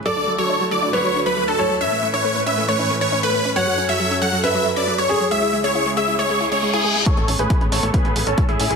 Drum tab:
HH |----------------|----------------|----------------|----------------|
BD |----------------|----------------|----------------|----------------|

HH |xxoxxxoxxxoxxxox|
BD |o---o---o---o---|